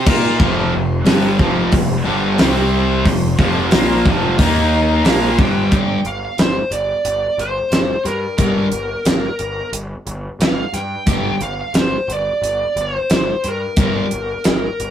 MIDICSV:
0, 0, Header, 1, 6, 480
1, 0, Start_track
1, 0, Key_signature, -2, "minor"
1, 0, Tempo, 665188
1, 297, Time_signature, 4, 2, 24, 8
1, 5578, Tempo, 672646
1, 10697, End_track
2, 0, Start_track
2, 0, Title_t, "Lead electric guitar"
2, 0, Program_c, 0, 29
2, 3641, Note_on_c, 0, 77, 93
2, 3893, Note_off_c, 0, 77, 0
2, 3893, Note_on_c, 0, 79, 107
2, 4376, Note_on_c, 0, 77, 102
2, 4387, Note_off_c, 0, 79, 0
2, 4615, Note_on_c, 0, 72, 97
2, 4622, Note_off_c, 0, 77, 0
2, 4848, Note_on_c, 0, 74, 85
2, 4861, Note_off_c, 0, 72, 0
2, 5340, Note_on_c, 0, 72, 83
2, 5347, Note_off_c, 0, 74, 0
2, 5789, Note_off_c, 0, 72, 0
2, 5815, Note_on_c, 0, 70, 79
2, 6032, Note_off_c, 0, 70, 0
2, 6040, Note_on_c, 0, 70, 83
2, 6975, Note_off_c, 0, 70, 0
2, 7494, Note_on_c, 0, 77, 102
2, 7726, Note_on_c, 0, 79, 114
2, 7739, Note_off_c, 0, 77, 0
2, 8215, Note_on_c, 0, 77, 91
2, 8223, Note_off_c, 0, 79, 0
2, 8436, Note_off_c, 0, 77, 0
2, 8475, Note_on_c, 0, 72, 97
2, 8687, Note_off_c, 0, 72, 0
2, 8714, Note_on_c, 0, 74, 97
2, 9198, Note_off_c, 0, 74, 0
2, 9205, Note_on_c, 0, 72, 86
2, 9682, Note_off_c, 0, 72, 0
2, 9685, Note_on_c, 0, 70, 80
2, 9894, Note_off_c, 0, 70, 0
2, 9925, Note_on_c, 0, 70, 78
2, 10697, Note_off_c, 0, 70, 0
2, 10697, End_track
3, 0, Start_track
3, 0, Title_t, "Tonewheel organ"
3, 0, Program_c, 1, 16
3, 46, Note_on_c, 1, 82, 73
3, 47, Note_on_c, 1, 63, 71
3, 48, Note_on_c, 1, 70, 67
3, 288, Note_off_c, 1, 82, 0
3, 289, Note_off_c, 1, 63, 0
3, 289, Note_off_c, 1, 70, 0
3, 289, Note_on_c, 1, 72, 63
3, 292, Note_on_c, 1, 84, 65
3, 294, Note_on_c, 1, 65, 63
3, 1713, Note_off_c, 1, 72, 0
3, 1715, Note_off_c, 1, 84, 0
3, 1716, Note_off_c, 1, 65, 0
3, 1724, Note_on_c, 1, 72, 74
3, 1727, Note_on_c, 1, 67, 76
3, 1733, Note_on_c, 1, 84, 83
3, 2199, Note_off_c, 1, 72, 0
3, 2203, Note_off_c, 1, 67, 0
3, 2205, Note_off_c, 1, 84, 0
3, 2207, Note_on_c, 1, 72, 58
3, 2208, Note_on_c, 1, 65, 66
3, 2214, Note_on_c, 1, 84, 72
3, 3158, Note_off_c, 1, 72, 0
3, 3159, Note_off_c, 1, 65, 0
3, 3162, Note_off_c, 1, 84, 0
3, 3169, Note_on_c, 1, 82, 72
3, 3171, Note_on_c, 1, 70, 65
3, 3178, Note_on_c, 1, 63, 75
3, 3645, Note_off_c, 1, 82, 0
3, 3646, Note_off_c, 1, 70, 0
3, 3646, Note_on_c, 1, 72, 69
3, 3648, Note_on_c, 1, 84, 84
3, 3649, Note_off_c, 1, 63, 0
3, 3649, Note_on_c, 1, 65, 80
3, 4124, Note_off_c, 1, 72, 0
3, 4125, Note_off_c, 1, 65, 0
3, 4125, Note_off_c, 1, 84, 0
3, 10697, End_track
4, 0, Start_track
4, 0, Title_t, "Distorted electric guitar"
4, 0, Program_c, 2, 30
4, 53, Note_on_c, 2, 58, 103
4, 56, Note_on_c, 2, 65, 108
4, 62, Note_on_c, 2, 70, 112
4, 287, Note_off_c, 2, 58, 0
4, 289, Note_off_c, 2, 65, 0
4, 289, Note_on_c, 2, 41, 93
4, 290, Note_on_c, 2, 48, 112
4, 292, Note_off_c, 2, 70, 0
4, 298, Note_on_c, 2, 53, 106
4, 520, Note_off_c, 2, 41, 0
4, 521, Note_off_c, 2, 48, 0
4, 529, Note_off_c, 2, 53, 0
4, 529, Note_on_c, 2, 41, 75
4, 530, Note_on_c, 2, 48, 67
4, 724, Note_off_c, 2, 41, 0
4, 724, Note_off_c, 2, 48, 0
4, 755, Note_on_c, 2, 43, 99
4, 768, Note_on_c, 2, 50, 111
4, 770, Note_on_c, 2, 55, 100
4, 997, Note_off_c, 2, 43, 0
4, 1002, Note_on_c, 2, 41, 97
4, 1003, Note_off_c, 2, 50, 0
4, 1004, Note_off_c, 2, 55, 0
4, 1006, Note_on_c, 2, 48, 105
4, 1010, Note_on_c, 2, 53, 105
4, 1240, Note_off_c, 2, 41, 0
4, 1242, Note_off_c, 2, 48, 0
4, 1244, Note_off_c, 2, 53, 0
4, 1249, Note_on_c, 2, 41, 65
4, 1251, Note_on_c, 2, 48, 80
4, 1443, Note_off_c, 2, 41, 0
4, 1444, Note_off_c, 2, 48, 0
4, 1474, Note_on_c, 2, 43, 108
4, 1481, Note_on_c, 2, 50, 93
4, 1483, Note_on_c, 2, 55, 104
4, 1715, Note_off_c, 2, 43, 0
4, 1718, Note_off_c, 2, 55, 0
4, 1719, Note_off_c, 2, 50, 0
4, 1722, Note_on_c, 2, 48, 96
4, 1727, Note_on_c, 2, 55, 98
4, 1729, Note_on_c, 2, 60, 117
4, 2198, Note_off_c, 2, 48, 0
4, 2201, Note_off_c, 2, 55, 0
4, 2202, Note_off_c, 2, 60, 0
4, 2202, Note_on_c, 2, 41, 68
4, 2209, Note_on_c, 2, 48, 70
4, 2398, Note_off_c, 2, 41, 0
4, 2401, Note_off_c, 2, 48, 0
4, 2445, Note_on_c, 2, 41, 90
4, 2457, Note_on_c, 2, 48, 98
4, 2459, Note_on_c, 2, 53, 108
4, 2680, Note_off_c, 2, 41, 0
4, 2685, Note_off_c, 2, 48, 0
4, 2687, Note_off_c, 2, 53, 0
4, 2688, Note_on_c, 2, 46, 100
4, 2697, Note_on_c, 2, 53, 101
4, 2697, Note_on_c, 2, 58, 102
4, 2921, Note_off_c, 2, 46, 0
4, 2926, Note_off_c, 2, 53, 0
4, 2926, Note_off_c, 2, 58, 0
4, 2934, Note_on_c, 2, 41, 95
4, 2941, Note_on_c, 2, 53, 100
4, 2943, Note_on_c, 2, 48, 101
4, 3165, Note_off_c, 2, 41, 0
4, 3174, Note_off_c, 2, 48, 0
4, 3174, Note_on_c, 2, 51, 93
4, 3176, Note_off_c, 2, 53, 0
4, 3176, Note_on_c, 2, 58, 107
4, 3184, Note_on_c, 2, 63, 115
4, 3643, Note_off_c, 2, 51, 0
4, 3646, Note_off_c, 2, 58, 0
4, 3646, Note_on_c, 2, 46, 83
4, 3650, Note_off_c, 2, 63, 0
4, 3650, Note_on_c, 2, 53, 105
4, 3660, Note_on_c, 2, 58, 104
4, 3881, Note_off_c, 2, 46, 0
4, 3881, Note_on_c, 2, 43, 114
4, 3883, Note_off_c, 2, 53, 0
4, 3885, Note_on_c, 2, 50, 119
4, 3888, Note_off_c, 2, 58, 0
4, 3892, Note_on_c, 2, 55, 119
4, 4112, Note_off_c, 2, 43, 0
4, 4121, Note_off_c, 2, 50, 0
4, 4121, Note_on_c, 2, 43, 88
4, 4122, Note_off_c, 2, 55, 0
4, 4128, Note_on_c, 2, 50, 78
4, 4131, Note_on_c, 2, 55, 100
4, 4318, Note_off_c, 2, 43, 0
4, 4322, Note_off_c, 2, 50, 0
4, 4323, Note_off_c, 2, 55, 0
4, 6054, Note_on_c, 2, 43, 86
4, 6060, Note_on_c, 2, 50, 105
4, 6065, Note_on_c, 2, 55, 88
4, 6245, Note_off_c, 2, 43, 0
4, 6248, Note_off_c, 2, 50, 0
4, 6251, Note_off_c, 2, 55, 0
4, 7969, Note_on_c, 2, 43, 94
4, 7969, Note_on_c, 2, 50, 107
4, 7974, Note_on_c, 2, 55, 90
4, 8162, Note_off_c, 2, 43, 0
4, 8162, Note_off_c, 2, 50, 0
4, 8164, Note_off_c, 2, 55, 0
4, 9898, Note_on_c, 2, 43, 87
4, 9903, Note_on_c, 2, 50, 93
4, 9908, Note_on_c, 2, 55, 109
4, 10089, Note_off_c, 2, 43, 0
4, 10091, Note_off_c, 2, 50, 0
4, 10094, Note_off_c, 2, 55, 0
4, 10697, End_track
5, 0, Start_track
5, 0, Title_t, "Picked electric bass"
5, 0, Program_c, 3, 34
5, 46, Note_on_c, 3, 46, 102
5, 274, Note_off_c, 3, 46, 0
5, 285, Note_on_c, 3, 29, 91
5, 513, Note_off_c, 3, 29, 0
5, 532, Note_on_c, 3, 29, 83
5, 756, Note_off_c, 3, 29, 0
5, 770, Note_on_c, 3, 31, 96
5, 995, Note_off_c, 3, 31, 0
5, 1004, Note_on_c, 3, 29, 99
5, 1231, Note_off_c, 3, 29, 0
5, 1245, Note_on_c, 3, 29, 80
5, 1471, Note_off_c, 3, 29, 0
5, 1490, Note_on_c, 3, 31, 92
5, 1714, Note_off_c, 3, 31, 0
5, 1732, Note_on_c, 3, 36, 94
5, 2182, Note_off_c, 3, 36, 0
5, 2203, Note_on_c, 3, 29, 76
5, 2430, Note_off_c, 3, 29, 0
5, 2442, Note_on_c, 3, 29, 90
5, 2669, Note_off_c, 3, 29, 0
5, 2685, Note_on_c, 3, 34, 92
5, 2910, Note_off_c, 3, 34, 0
5, 2928, Note_on_c, 3, 29, 101
5, 3152, Note_off_c, 3, 29, 0
5, 3166, Note_on_c, 3, 39, 87
5, 3619, Note_off_c, 3, 39, 0
5, 3648, Note_on_c, 3, 34, 100
5, 3872, Note_off_c, 3, 34, 0
5, 3888, Note_on_c, 3, 31, 97
5, 4113, Note_off_c, 3, 31, 0
5, 4130, Note_on_c, 3, 31, 80
5, 4277, Note_off_c, 3, 31, 0
5, 4365, Note_on_c, 3, 31, 85
5, 4514, Note_off_c, 3, 31, 0
5, 4606, Note_on_c, 3, 31, 73
5, 4755, Note_off_c, 3, 31, 0
5, 4840, Note_on_c, 3, 31, 77
5, 4991, Note_off_c, 3, 31, 0
5, 5085, Note_on_c, 3, 31, 86
5, 5234, Note_off_c, 3, 31, 0
5, 5325, Note_on_c, 3, 31, 85
5, 5475, Note_off_c, 3, 31, 0
5, 5567, Note_on_c, 3, 31, 92
5, 5716, Note_off_c, 3, 31, 0
5, 5806, Note_on_c, 3, 43, 90
5, 5955, Note_off_c, 3, 43, 0
5, 6047, Note_on_c, 3, 31, 87
5, 6195, Note_off_c, 3, 31, 0
5, 6281, Note_on_c, 3, 31, 84
5, 6431, Note_off_c, 3, 31, 0
5, 6523, Note_on_c, 3, 31, 83
5, 6672, Note_off_c, 3, 31, 0
5, 6765, Note_on_c, 3, 31, 83
5, 6913, Note_off_c, 3, 31, 0
5, 7000, Note_on_c, 3, 31, 90
5, 7149, Note_off_c, 3, 31, 0
5, 7243, Note_on_c, 3, 31, 93
5, 7392, Note_off_c, 3, 31, 0
5, 7480, Note_on_c, 3, 31, 97
5, 7630, Note_off_c, 3, 31, 0
5, 7720, Note_on_c, 3, 43, 90
5, 7870, Note_off_c, 3, 43, 0
5, 7965, Note_on_c, 3, 31, 91
5, 8113, Note_off_c, 3, 31, 0
5, 8201, Note_on_c, 3, 31, 93
5, 8350, Note_off_c, 3, 31, 0
5, 8437, Note_on_c, 3, 31, 84
5, 8588, Note_off_c, 3, 31, 0
5, 8681, Note_on_c, 3, 31, 89
5, 8831, Note_off_c, 3, 31, 0
5, 8921, Note_on_c, 3, 31, 94
5, 9071, Note_off_c, 3, 31, 0
5, 9167, Note_on_c, 3, 31, 92
5, 9315, Note_off_c, 3, 31, 0
5, 9413, Note_on_c, 3, 31, 94
5, 9560, Note_off_c, 3, 31, 0
5, 9655, Note_on_c, 3, 43, 88
5, 9801, Note_off_c, 3, 43, 0
5, 9890, Note_on_c, 3, 31, 88
5, 10038, Note_off_c, 3, 31, 0
5, 10142, Note_on_c, 3, 31, 88
5, 10287, Note_off_c, 3, 31, 0
5, 10387, Note_on_c, 3, 31, 83
5, 10531, Note_off_c, 3, 31, 0
5, 10620, Note_on_c, 3, 31, 94
5, 10697, Note_off_c, 3, 31, 0
5, 10697, End_track
6, 0, Start_track
6, 0, Title_t, "Drums"
6, 46, Note_on_c, 9, 49, 117
6, 48, Note_on_c, 9, 36, 127
6, 118, Note_off_c, 9, 49, 0
6, 120, Note_off_c, 9, 36, 0
6, 287, Note_on_c, 9, 36, 115
6, 360, Note_off_c, 9, 36, 0
6, 761, Note_on_c, 9, 46, 57
6, 769, Note_on_c, 9, 38, 109
6, 834, Note_off_c, 9, 46, 0
6, 842, Note_off_c, 9, 38, 0
6, 1006, Note_on_c, 9, 36, 102
6, 1078, Note_off_c, 9, 36, 0
6, 1240, Note_on_c, 9, 46, 60
6, 1245, Note_on_c, 9, 36, 106
6, 1312, Note_off_c, 9, 46, 0
6, 1317, Note_off_c, 9, 36, 0
6, 1719, Note_on_c, 9, 46, 62
6, 1727, Note_on_c, 9, 38, 119
6, 1791, Note_off_c, 9, 46, 0
6, 1799, Note_off_c, 9, 38, 0
6, 2204, Note_on_c, 9, 46, 70
6, 2205, Note_on_c, 9, 36, 93
6, 2276, Note_off_c, 9, 46, 0
6, 2277, Note_off_c, 9, 36, 0
6, 2444, Note_on_c, 9, 36, 99
6, 2516, Note_off_c, 9, 36, 0
6, 2677, Note_on_c, 9, 46, 60
6, 2685, Note_on_c, 9, 38, 110
6, 2749, Note_off_c, 9, 46, 0
6, 2757, Note_off_c, 9, 38, 0
6, 2926, Note_on_c, 9, 36, 109
6, 2999, Note_off_c, 9, 36, 0
6, 3165, Note_on_c, 9, 46, 67
6, 3167, Note_on_c, 9, 36, 106
6, 3237, Note_off_c, 9, 46, 0
6, 3239, Note_off_c, 9, 36, 0
6, 3643, Note_on_c, 9, 46, 60
6, 3651, Note_on_c, 9, 38, 106
6, 3715, Note_off_c, 9, 46, 0
6, 3723, Note_off_c, 9, 38, 0
6, 3887, Note_on_c, 9, 36, 125
6, 3959, Note_off_c, 9, 36, 0
6, 4125, Note_on_c, 9, 42, 84
6, 4128, Note_on_c, 9, 36, 119
6, 4198, Note_off_c, 9, 42, 0
6, 4200, Note_off_c, 9, 36, 0
6, 4364, Note_on_c, 9, 42, 55
6, 4436, Note_off_c, 9, 42, 0
6, 4605, Note_on_c, 9, 42, 77
6, 4613, Note_on_c, 9, 38, 118
6, 4677, Note_off_c, 9, 42, 0
6, 4685, Note_off_c, 9, 38, 0
6, 4847, Note_on_c, 9, 42, 65
6, 4919, Note_off_c, 9, 42, 0
6, 5087, Note_on_c, 9, 42, 92
6, 5159, Note_off_c, 9, 42, 0
6, 5335, Note_on_c, 9, 42, 71
6, 5407, Note_off_c, 9, 42, 0
6, 5569, Note_on_c, 9, 42, 85
6, 5577, Note_on_c, 9, 38, 96
6, 5640, Note_off_c, 9, 42, 0
6, 5648, Note_off_c, 9, 38, 0
6, 5810, Note_on_c, 9, 42, 79
6, 5817, Note_on_c, 9, 38, 33
6, 5881, Note_off_c, 9, 42, 0
6, 5889, Note_off_c, 9, 38, 0
6, 6042, Note_on_c, 9, 42, 90
6, 6046, Note_on_c, 9, 36, 104
6, 6113, Note_off_c, 9, 42, 0
6, 6117, Note_off_c, 9, 36, 0
6, 6281, Note_on_c, 9, 42, 62
6, 6353, Note_off_c, 9, 42, 0
6, 6523, Note_on_c, 9, 42, 99
6, 6530, Note_on_c, 9, 38, 106
6, 6594, Note_off_c, 9, 42, 0
6, 6602, Note_off_c, 9, 38, 0
6, 6762, Note_on_c, 9, 42, 73
6, 6833, Note_off_c, 9, 42, 0
6, 7007, Note_on_c, 9, 42, 100
6, 7078, Note_off_c, 9, 42, 0
6, 7246, Note_on_c, 9, 42, 64
6, 7317, Note_off_c, 9, 42, 0
6, 7488, Note_on_c, 9, 42, 86
6, 7495, Note_on_c, 9, 38, 102
6, 7559, Note_off_c, 9, 42, 0
6, 7567, Note_off_c, 9, 38, 0
6, 7724, Note_on_c, 9, 42, 70
6, 7731, Note_on_c, 9, 38, 34
6, 7795, Note_off_c, 9, 42, 0
6, 7803, Note_off_c, 9, 38, 0
6, 7959, Note_on_c, 9, 42, 81
6, 7961, Note_on_c, 9, 36, 112
6, 8030, Note_off_c, 9, 42, 0
6, 8032, Note_off_c, 9, 36, 0
6, 8201, Note_on_c, 9, 42, 60
6, 8272, Note_off_c, 9, 42, 0
6, 8440, Note_on_c, 9, 42, 82
6, 8448, Note_on_c, 9, 38, 109
6, 8512, Note_off_c, 9, 42, 0
6, 8519, Note_off_c, 9, 38, 0
6, 8694, Note_on_c, 9, 42, 62
6, 8765, Note_off_c, 9, 42, 0
6, 8936, Note_on_c, 9, 42, 83
6, 9007, Note_off_c, 9, 42, 0
6, 9173, Note_on_c, 9, 42, 69
6, 9244, Note_off_c, 9, 42, 0
6, 9408, Note_on_c, 9, 42, 87
6, 9416, Note_on_c, 9, 38, 100
6, 9479, Note_off_c, 9, 42, 0
6, 9487, Note_off_c, 9, 38, 0
6, 9651, Note_on_c, 9, 42, 74
6, 9722, Note_off_c, 9, 42, 0
6, 9885, Note_on_c, 9, 42, 93
6, 9888, Note_on_c, 9, 36, 124
6, 9956, Note_off_c, 9, 42, 0
6, 9959, Note_off_c, 9, 36, 0
6, 10131, Note_on_c, 9, 42, 63
6, 10203, Note_off_c, 9, 42, 0
6, 10368, Note_on_c, 9, 42, 88
6, 10376, Note_on_c, 9, 38, 106
6, 10439, Note_off_c, 9, 42, 0
6, 10447, Note_off_c, 9, 38, 0
6, 10621, Note_on_c, 9, 42, 66
6, 10693, Note_off_c, 9, 42, 0
6, 10697, End_track
0, 0, End_of_file